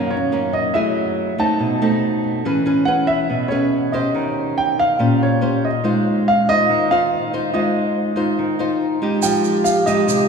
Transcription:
Already playing: F#2 D#3 A#3 C#4 F5
0.11 C#5
0.32 D#3 A#3 C#4
0.53 D#5
0.74 F#3 A3 E4 G#4 E5
1.38 A3 C4 D#4 A5
1.60 B2
1.82 A3 C4 D#4
2.45 E3 C#4 G#4 B4
2.66 C#4 G#4 B4
2.85 C#4 G#4 B4 F#5
3.07 E5
3.30 B2
3.48 C#4 G#4 B4 C#5
3.92 C#4 G4 C5 D#5
4.15 D#3
4.58 G5
4.79 F5
4.99 A#2 C#4 G4 C5
5.23 C#5
5.41 C#4 G4 C5
5.65 D#5
5.84 G#3 D#4 F4 C5
6.28 F5
6.49 D#4 F4 C5 D#5
6.69 D#3
6.91 D#4 F4 C5 F5
7.33 D#4 F4 C5
7.53 G#3 D#4 F4 C5 D#5
8.16 D#4 F4 C5
8.39 D#3
8.59 D#4 F4 C5
9.02 G#3 D#4 G4
9.21 F3 G4 G5, shaker
9.44 shaker
9.64 F5, shaker
9.86 G#3 D#4 G4 D#5, shaker
10.07 C3, shaker

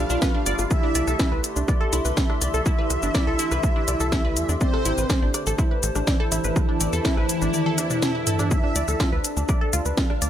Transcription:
Already playing: D3 A3 F4 G4 D5 F5 B5
0.10 B1 D4, shaker
0.22 B4, kick, snare, shaker
0.34 D4
0.46 G1 D5, closed hi-hat, shaker
0.59 G1 F4, cross-stick, shaker
0.71 E4 E5, kick, shaker
0.83 D4
0.93 C2 D5 C6, closed hi-hat, shaker
0.98 E5
1.07 C2 A4, cross-stick, shaker
1.19 E4, kick, snare, shaker
1.32 C2 B4
1.44 closed hi-hat, shaker
1.56 C2 D4, shaker
1.68 D5, kick, cross-stick, shaker
1.81 A4
1.93 C2 E4, closed hi-hat, shaker
2.05 C2 B4, shaker
2.17 E4 E5, kick, snare, shaker
2.30 D4, cross-stick
2.41 C2 D5, closed hi-hat, shaker
2.54 C2 A4, shaker
2.66 E4, kick, shaker
2.78 B4
2.90 C2, cross-stick, closed hi-hat, shaker
3.03 G1 D4, shaker
3.15 D5, kick, snare, shaker
3.27 C2 A4
3.39 E4, closed hi-hat, shaker
3.52 C2 B4, cross-stick, shaker
3.63 kick, shaker
3.76 D4
3.88 C2 D5, closed hi-hat, shaker
4.00 C2 A4, shaker
4.12 E4, kick, cross-stick, snare, shaker
4.25 B4
4.37 E2, closed hi-hat, shaker
4.49 E2 D4, shaker
4.61 C4 C5 D5, kick, shaker
4.73 A4 C5, cross-stick
4.85 A1 E4, closed hi-hat, shaker
4.98 A1 B4 A5, shaker
5.10 kick, snare, shaker
5.22 A1 D4
5.34 D5, cross-stick, closed hi-hat, shaker
5.47 A1 A4, shaker
5.58 E4, kick, shaker
5.71 B4
5.83 A1, closed hi-hat, shaker
5.95 A1 D4, cross-stick, shaker
6.07 E3 E4 D5, kick, snare, shaker
6.20 A4
6.32 A1 E4, closed hi-hat, shaker
6.44 A1 B4, shaker
6.56 kick, cross-stick, shaker
6.69 D4
6.80 A1 D5, closed hi-hat, shaker
6.93 E2 A4, shaker
7.05 E4, kick, snare, shaker
7.17 A1 B4, cross-stick
7.29 closed hi-hat, shaker
7.42 A1 D4, shaker
7.54 D5, high tom, shaker
7.66 A4, high tom
7.78 D4, cross-stick, closed hi-hat, shaker
7.90 D4, mid tom, shaker
8.02 snare, mid tom, shaker
8.15 E4
8.27 A4, closed hi-hat, mid tom, shaker
8.39 D4, cross-stick, mid tom, shaker
8.51 D3 A3 D4 E4 E5, kick, shaker
8.57 D5
8.64 D4
8.76 D2 D5, closed hi-hat, shaker
8.88 D2 A4, cross-stick, shaker
9.00 F4, kick, snare, shaker
9.12 D2 B4
9.24 closed hi-hat, shaker
9.37 D2 D4, shaker
9.49 D5, kick, cross-stick, shaker
9.61 A4
9.73 D2 F4, closed hi-hat, shaker
9.86 D2 B4, shaker
9.97 F4 F5, kick, snare, shaker
10.10 D4, cross-stick
10.22 D2 D5, closed hi-hat, shaker

